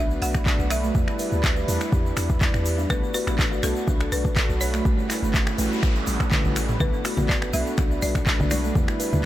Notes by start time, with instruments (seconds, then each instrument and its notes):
Already playing: 808-style bass B1, analog polysynth A3 D4 F#4 B4, analog synth pad B3 F#4 B4 D5, marimba E5
0.10 shaker
0.22 808-style bass B1, marimba F#5, open hi-hat, shaker
0.34 finger snap, kick, shaker
0.46 kick, clap, shaker
0.59 808-style bass B1, shaker
0.70 analog polysynth A3 D4 F#4 B4, marimba E5, finger snap, open hi-hat, shaker
0.84 kalimba A3, shaker
0.95 808-style bass E2, analog polysynth G3 D4 E4 B4, analog synth pad E4 G4, kalimba E4, kick, shaker
1.08 kalimba E4, finger snap, shaker
1.19 kalimba B4, open hi-hat, shaker
1.32 808-style bass D2, kalimba E4, shaker
1.44 kalimba B4, finger snap, kick, clap, shaker
1.57 kalimba B4, shaker
1.68 808-style bass E2, analog polysynth G3 D4 E4 B4, kalimba E4, open hi-hat, shaker
1.81 finger snap, shaker
1.92 808-style bass E2, kalimba G4, kick, shaker
2.06 shaker
2.17 808-style bass E2, finger snap, open hi-hat, shaker
2.29 kick, shaker
2.41 kick, clap, shaker
2.54 808-style bass E2, finger snap, shaker
2.66 open hi-hat, shaker
2.78 kalimba D4, shaker
2.90 808-style bass B1, analog polysynth A3 D4 F#4 B4, kalimba B3, analog synth pad B3 F#4 A4 D5, marimba B4, finger snap, kick, shaker
3.03 kalimba B3, shaker
3.14 kalimba F#4, marimba B4, open hi-hat, shaker
3.27 808-style bass A1, kalimba B3, finger snap, shaker
3.39 kick, clap, shaker
3.52 kalimba F#4, shaker
3.63 808-style bass B1, analog polysynth A3 D4 F#4 B4, kalimba B3, marimba A4, finger snap, open hi-hat, shaker
3.76 shaker
3.88 808-style bass B1, kalimba D4, kick, shaker
4.00 finger snap, shaker
4.12 808-style bass B1, marimba B4, open hi-hat, shaker
4.25 kick, shaker
4.36 finger snap, kick, clap, shaker
4.49 808-style bass B1, shaker
4.61 analog polysynth A3 D4 F#4 B4, marimba C#5, open hi-hat, shaker
4.74 kalimba A3, finger snap, shaker
4.85 808-style bass A1, analog polysynth G3 C#4 F#4 B4, kalimba A3, analog synth pad A3 E4 B4, kick, noise sweep, shaker
4.98 kalimba A3, shaker
5.10 kalimba E4, finger snap, clap, open hi-hat, shaker
5.22 808-style bass G1, kalimba A3, shaker
5.34 kalimba E4, kick, clap, shaker
5.47 kalimba E4, finger snap, shaker
5.58 808-style bass A1, analog polysynth G3 C#4 F#4 B4, kalimba A3, open hi-hat, shaker
5.73 shaker
5.83 808-style bass A1, kalimba C#4, finger snap, kick, shaker
5.95 shaker
6.07 808-style bass A1, open hi-hat, high tom, shaker
6.20 finger snap, kick, shaker
6.32 kick, clap, mid tom, shaker
6.44 808-style bass A1, mid tom, shaker
6.56 finger snap, open hi-hat, shaker
6.69 kalimba G3, mid tom, shaker
6.80 808-style bass B1, analog polysynth A3 D4 F#4 B4, analog synth pad B3 F#4 D5, kalimba B3, marimba B4, kick, low conga, shaker
6.93 kalimba B3, shaker
7.05 kalimba F#4, finger snap, open hi-hat, shaker
7.17 808-style bass A1, kalimba B3, low conga, shaker
7.29 marimba D5, kick, clap, shaker
7.42 kalimba A4, finger snap, shaker
7.53 808-style bass B1, analog polysynth A3 D4 F#4 B4, kalimba B3, marimba E5, open hi-hat, high conga, shaker
7.67 shaker
7.78 808-style bass B1, kalimba D4, finger snap, kick, shaker
7.91 shaker
8.02 808-style bass B1, marimba D5, open hi-hat, high conga, shaker
8.15 finger snap, kick, shaker
8.27 kick, clap, shaker
8.40 808-style bass B1, low conga, shaker
8.51 analog polysynth A3 D4 F#4 B4, marimba D5, finger snap, open hi-hat, high conga, shaker
8.64 kalimba A3, shaker
8.75 808-style bass E2, analog polysynth G3 D4 E4 B4, analog synth pad E4 G4, kalimba E4, kick, low conga, shaker
8.88 kalimba E4, finger snap, shaker
9.00 kalimba B4, open hi-hat, shaker
9.12 808-style bass D2, kalimba E4, low conga, shaker